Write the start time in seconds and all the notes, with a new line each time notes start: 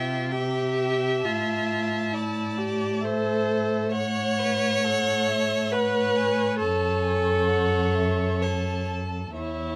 Already playing: C3 F4 E5 G5
0.31 G4 E5 G5
0.77 G5
1.22 A2 F4 A5
2.12 E4 D5
2.57 G4
3.01 A4 C5 E5
3.91 C#5 F#5
4.39 B4
4.83 A4 F#5
5.28 E5
5.71 B4 C#5 F#5
6.16 G#5
6.58 F#2 A4 C#5 A5
7.03 G#5
7.48 F#5
7.95 E5
8.41 A4 C#5 A5
9.34 E2 E4 C#5 E5